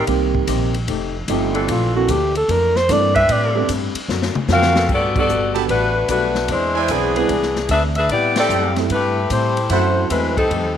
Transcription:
0.06 upright bass C2, hollow-body jazz guitar C3 A#3 D#4 G4, grand piano D#3 G3 A#3 C4 G4, kick, ride
0.35 kick
0.47 upright bass A#1, hollow-body jazz guitar C3 A#3 D#4 G4, kick, hi-hat pedal, ride
0.74 ride
0.87 upright bass F1, hollow-body jazz guitar F3 A3 D#4 G4, kick, ride
1.28 upright bass G1, grand piano F3 A3 C4 D#4 G4, hollow-body jazz guitar F3 A3 D#4 G4, kick, hi-hat pedal, ride
1.53 saxophone section E3 C4 D4 A4, ride
1.68 upright bass A#1, hollow-body jazz guitar A#2 E3 A3 D4, alto saxophone F4, kick, ride
1.95 grand piano E3 A#3 C4 D4 A4, alto saxophone F#4
2.08 upright bass D2, hollow-body jazz guitar A#2 E3 A3 D4, alto saxophone G4, kick, hi-hat pedal, ride
2.35 alto saxophone A4, ride
2.48 upright bass F2, hollow-body jazz guitar A#2 E3 A3 D4, alto saxophone A#4, kick, ride
2.76 alto saxophone C5, snare
2.89 upright bass G2, hollow-body jazz guitar A#2 E3 A3 D4, grand piano E3 A#3 C4 D4 A4, alto saxophone D5, kick, snare, hi-hat pedal, ride
3.13 saxophone section G3 C4 D4 B4, alto saxophone E5, kick, ride
3.29 hollow-body jazz guitar A2 G3 C4 D4, upright bass A2, alto saxophone D5, kick, ride
3.55 grand piano G3 B3 C4 D4 A4
3.68 upright bass G2, hollow-body jazz guitar A2 G3 C4 D4, kick, hi-hat pedal, ride
3.95 muted upright bass stroke, ride
4.08 upright bass F#2, hollow-body jazz guitar D3 C4 F#4 A#4, snare
4.22 snare
4.35 muted upright bass stroke, mid tom
4.48 upright bass F2, hollow-body jazz guitar D3 C4 F#4 A#4, grand piano F#3 C4 D4 F4 A#4, snare, hi-hat pedal
4.52 saxophone section C4 F#4 A#4 F5
4.62 snare
4.75 saxophone section G3 B3 F#4 A4, snare
4.89 upright bass G2, hollow-body jazz guitar G3 B3 F#4 A4, kick, crash
4.93 saxophone section B3 F#4 A4 D5
5.16 grand piano G3 B3 D4 F#4 A4, saxophone section B3 F#4 A4 D5, kick, crash
5.28 upright bass G1, hollow-body jazz guitar G3 B3 F#4 A4, hi-hat pedal
5.55 grand piano G3 B3 D4 F#4 A4, trumpet section G4 B4 F#5 A5, ride
5.68 upright bass A1, hollow-body jazz guitar G3 B3 F#4 A4, saxophone section A3 D4 F#4 B4, kick, ride
6.08 upright bass B1, hollow-body jazz guitar G3 B3 F#4 A4, saxophone section A3 D4 F#4 B4, kick, hi-hat pedal, ride
6.35 snare
6.48 upright bass E2, hollow-body jazz guitar E3 C4 D4 G#4, saxophone section G#3 D4 E4 C5, kick, ride
6.75 trumpet section E4 C5 D5 G#5
6.88 upright bass B1, hollow-body jazz guitar E3 C4 D4 G#4, saxophone section E3 B3 D4 G#4, kick, hi-hat pedal, ride
7.16 saxophone section E3 B3 D4 G#4, grand piano G#3 C4 D4 E4 B4, ride
7.29 upright bass C2, hollow-body jazz guitar E3 C4 D4 G#4, kick, ride
7.42 snare
7.56 snare
7.69 upright bass D2, hollow-body jazz guitar E3 C4 D4 G#4, saxophone section D4 G#4 B4 E5, kick, hi-hat pedal, ride
7.95 saxophone section D4 G#4 B4 E5, ride
8.09 upright bass A2, hollow-body jazz guitar A2 G3 C4 E4, saxophone section B3 E4 G4 D5, kick, ride
8.36 saxophone section C4 G4 A4 D5, trumpet section E4 A4 C5 G5, snare, ride
8.49 upright bass F#2, hollow-body jazz guitar A2 G3 C4 E4, hi-hat pedal
8.76 grand piano G3 A3 C4 E4 A4, snare, ride
8.90 upright bass G2, hollow-body jazz guitar A2 G3 C4 E4, saxophone section A3 E4 G4 B4, kick, ride
9.30 hollow-body jazz guitar A2 G3 C4 E4, upright bass A2, saxophone section A3 E4 G4 C5, kick, hi-hat pedal, ride
9.57 ride
9.70 upright bass F#2, hollow-body jazz guitar F#2 E3 A3 C4, grand piano F#3 A3 C4 E4 A4, saxophone section A3 E4 F#4 C5, trumpet section E4 A4 C5 F#5, kick, ride
10.09 upright bass E2, hollow-body jazz guitar F#2 E3 A3 C4, saxophone section G#3 C4 E4 A4 B4, kick, hi-hat pedal, ride
10.37 saxophone section G3 C4 D#4 A4, kick, ride
10.50 upright bass F2, hollow-body jazz guitar F3 A3 D#4 G4, kick, ride
10.63 upright bass D#2

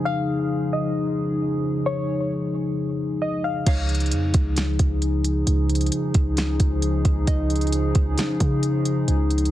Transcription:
Already playing: analog synth pad C#3 F3 D#4 G#4, five-string banjo C#4 F4
0.05 synth pluck F5, five-string banjo F5
0.73 synth pluck D#5
1.86 synth pluck C#5
3.22 synth pluck D#5
3.44 synth pluck F5
3.66 808-style bass C#2, analog synth pad C#3 F3 D#4 G#4, five-string banjo D#4 C#5 F5, kick, closed hi-hat, crash
3.89 closed hi-hat
3.95 closed hi-hat
4.00 closed hi-hat
4.06 closed hi-hat
4.11 808-style bass F2, closed hi-hat
4.34 808-style bass C#2, kick, closed hi-hat
4.56 snare, closed hi-hat
4.79 808-style bass C#2, kick, closed hi-hat
5.02 closed hi-hat
5.24 closed hi-hat
5.47 808-style bass C#2, closed hi-hat
5.70 closed hi-hat
5.75 closed hi-hat
5.81 closed hi-hat
5.86 closed hi-hat
5.92 closed hi-hat
6.14 808-style bass C#2, kick, closed hi-hat
6.37 snare, closed hi-hat
6.60 808-style bass C#2, kick, closed hi-hat
6.82 closed hi-hat
7.05 808-style bass C#2, kick, closed hi-hat
7.27 808-style bass C#2, five-string banjo D#5, kick, closed hi-hat
7.50 closed hi-hat
7.56 closed hi-hat
7.61 closed hi-hat
7.67 closed hi-hat
7.72 closed hi-hat
7.95 808-style bass C#2, kick, closed hi-hat
8.18 snare, closed hi-hat
8.40 808-style bass C#3, kick, closed hi-hat
8.63 closed hi-hat
8.85 closed hi-hat
9.08 808-style bass C#2, closed hi-hat
9.31 closed hi-hat
9.38 closed hi-hat
9.45 closed hi-hat

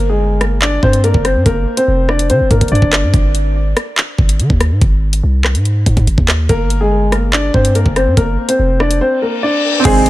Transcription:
Already playing: 808-style bass G1
0.09 grand piano G#3 G#4
0.41 grand piano A#3 A#4, cross-stick, closed hi-hat
0.62 grand piano D4 D5, clap
0.83 808-style bass G2, grand piano C4 C5, kick
0.93 closed hi-hat
1.04 grand piano A#3 A#4, closed hi-hat
1.14 808-style bass G1, kick
1.25 grand piano C4 C5, cross-stick, closed hi-hat
1.35 808-style bass G2
1.46 808-style bass G1, grand piano A#3 A#4, kick, closed hi-hat
1.77 grand piano C4 C5, closed hi-hat
1.88 808-style bass F1
2.09 grand piano D4 D5, cross-stick
2.19 closed hi-hat
2.30 808-style bass D3, grand piano C4 C5, closed hi-hat
2.40 808-style bass F1
2.51 808-style bass G2, grand piano A#3 A#4, kick, closed hi-hat
2.61 808-style bass G1, kick, closed hi-hat
2.68 808-style bass G2, grand piano D5, closed hi-hat
2.72 grand piano D4, closed hi-hat
2.82 808-style bass G1, kick
2.93 cross-stick, clap, closed hi-hat
3.03 808-style bass G2
3.14 808-style bass G#1, kick, closed hi-hat
3.35 closed hi-hat
3.77 cross-stick, closed hi-hat
3.98 clap
4.18 808-style bass G#1, kick
4.29 closed hi-hat
4.40 808-style bass D#3, closed hi-hat
4.50 808-style bass D#2, kick
4.61 cross-stick, closed hi-hat
4.71 808-style bass G#2
4.82 808-style bass G#1, kick, closed hi-hat
5.13 closed hi-hat
5.23 808-style bass C2
5.44 cross-stick, clap
5.55 808-style bass G#2, closed hi-hat
5.65 closed hi-hat
5.86 808-style bass G#2, kick, closed hi-hat
5.97 808-style bass G#2, kick, closed hi-hat
6.07 808-style bass G#1, closed hi-hat
6.18 808-style bass D#2, kick
6.28 cross-stick, clap, closed hi-hat
6.49 808-style bass G1, grand piano A#3 A#4, kick, closed hi-hat
6.70 closed hi-hat
6.81 grand piano G#3 G#4
7.12 grand piano A#3 A#4, cross-stick, closed hi-hat
7.33 grand piano D4 D5, clap
7.54 808-style bass G2, grand piano C4 C5, kick
7.65 closed hi-hat
7.75 grand piano A#3 A#4, closed hi-hat
7.86 808-style bass G1, kick
7.96 grand piano C4 C5, cross-stick, closed hi-hat
8.07 808-style bass G2
8.17 808-style bass G1, grand piano A#3 A#4, kick, closed hi-hat
8.49 grand piano C4 C5, closed hi-hat
8.59 808-style bass F1
8.80 grand piano D4 D5, cross-stick
8.91 closed hi-hat
9.01 grand piano C4 C5, reverse cymbal
9.22 grand piano A#3 A#4
9.43 grand piano D4 D5
9.80 felt piano C4
9.85 808-style bass G#1, string section C3 D#3 C4, grand piano G#3 G#4, felt piano C5, kick, closed hi-hat, crash, impact
10.06 closed hi-hat

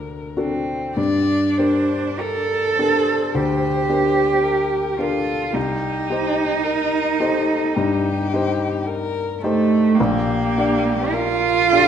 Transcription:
Already playing: grand piano D2 D4 F#4 A4, violin A#4
0.37 cello C4, grand piano D4 F#4 A4
0.97 grand piano G2, cello D4, violin D5
1.57 grand piano D4 G4 A#4, violin C5
2.18 cello A4, violin A#4
2.78 grand piano D4 G4 A#4, violin C5
3.34 grand piano D2, cello G4
3.89 grand piano D4 G4 A#4
4.43 violin A#4
4.99 grand piano D4 G4 A#4, cello F4, violin A4
5.53 grand piano C2, cello D#4, violin G4
6.10 grand piano D#4 G4 C5
6.64 violin A#4
7.20 grand piano D#4 G4 C5, violin A4
7.75 grand piano G2, violin G4
8.34 grand piano D#4 G4 C5
8.86 violin A#4
9.41 cello A3, grand piano D#4 G4 C5, violin A4
9.95 cello A#3, violin G4
10.00 grand piano A#1
10.58 grand piano D4 G4 D5
11.11 cello F4, violin A#4
11.68 violin A4
11.73 grand piano D4 G4 D5

